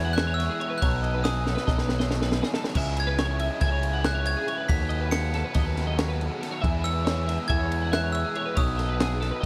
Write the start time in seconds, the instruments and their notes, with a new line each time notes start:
Already playing: picked electric bass E2, overdriven electric guitar E3 G#3 B3 E4 G#4, glockenspiel G#6
0.05 clean electric guitar F#5
0.13 clean electric guitar E5, glockenspiel F#6
0.18 snare, ride
0.27 clean electric guitar C#5
0.34 glockenspiel E6
0.40 snare, ride
0.50 clean electric guitar G#4
0.60 clean electric guitar C#5, ride
0.70 clean electric guitar B4
0.78 overdriven electric guitar B2 D#3, clean electric guitar C#5, glockenspiel F#6
0.82 picked electric bass B1, overdriven electric guitar F#3 B3 D#4 A4, kick, ride
1.03 clean electric guitar D#5, ride
1.14 clean electric guitar B4
1.23 clean electric guitar G#4, glockenspiel D#6, snare, ride
1.46 clean electric guitar A4, snare
1.55 clean electric guitar B4, snare
1.66 picked electric bass B1, overdriven electric guitar B2 D#3 F#3 B3 D#4 A4, clean electric guitar D#5, kick, snare
1.78 clean electric guitar B4, snare
1.89 snare
1.99 clean electric guitar D#5, snare
2.10 clean electric guitar C#5, snare
2.22 clean electric guitar B4, snare
2.32 snare
2.42 clean electric guitar G#4, snare
2.54 clean electric guitar A4, snare
2.64 clean electric guitar C#5, snare
2.74 picked electric bass C#2, overdriven electric guitar C#3 G#3 C#4 E4 G#4, clean electric guitar E5, kick, crash
2.97 clean electric guitar C#5, glockenspiel G#6, ride
3.07 clean electric guitar B4
3.19 clean electric guitar C#5, snare, ride
3.39 clean electric guitar E5, ride
3.51 clean electric guitar D#5
3.60 picked electric bass C#2, overdriven electric guitar C#3 G#3 C#4 E4 G#4, clean electric guitar E5, glockenspiel G#6, kick, snare, ride
3.72 clean electric guitar C#5
3.83 ride
3.93 clean electric guitar F#5
4.04 clean electric guitar E5, glockenspiel F#6, snare, ride
4.15 clean electric guitar C#5
4.26 glockenspiel G#6, ride
4.37 clean electric guitar G#4
4.47 clean electric guitar C#5, ride
4.58 clean electric guitar B4
4.68 picked electric bass D#2, overdriven electric guitar D#3 F#3 B3 F#4 A4, clean electric guitar C#5, glockenspiel B6, kick, ride
4.89 clean electric guitar D#5, ride
5.01 clean electric guitar B4
5.11 clean electric guitar G#4, glockenspiel C#7, snare, ride
5.34 clean electric guitar A4, snare, ride
5.44 clean electric guitar B4
5.54 picked electric bass D#2, overdriven electric guitar D#3 F#3 B3 F#4 A4, clean electric guitar D#5, kick, snare, ride
5.65 clean electric guitar B4
5.77 snare, ride
5.87 clean electric guitar D#5
5.98 clean electric guitar C#5, snare, ride
6.08 clean electric guitar B4
6.21 ride
6.31 clean electric guitar G#4
6.41 clean electric guitar A4, snare, ride
6.51 clean electric guitar C#5
6.62 picked electric bass E2, overdriven electric guitar E3 G#3 B3 E4 G#4, clean electric guitar E5, kick, ride
6.84 clean electric guitar C#5, glockenspiel E6, ride
6.93 clean electric guitar B4
7.05 clean electric guitar C#5, snare, ride
7.28 clean electric guitar E5, snare, ride
7.37 clean electric guitar D#5
7.48 picked electric bass E2, overdriven electric guitar E3 G#3 B3 E4 G#4, clean electric guitar E5, glockenspiel G#6, kick, ride
7.60 clean electric guitar C#5
7.72 ride
7.82 clean electric guitar F#5
7.92 clean electric guitar E5, glockenspiel F#6, snare, ride
8.04 clean electric guitar C#5
8.13 glockenspiel E6, ride
8.25 clean electric guitar G#4
8.35 clean electric guitar C#5, ride
8.46 clean electric guitar B4
8.55 picked electric bass B1, overdriven electric guitar B2 D#3 F#3 B3 D#4 A4, clean electric guitar C#5, glockenspiel D#6, kick, ride
8.77 clean electric guitar D#5, snare, ride
8.89 clean electric guitar B4
9.00 clean electric guitar G#4, snare, ride
9.21 clean electric guitar A4, snare, ride
9.31 clean electric guitar B4
9.41 overdriven electric guitar D#4 A4, clean electric guitar D#5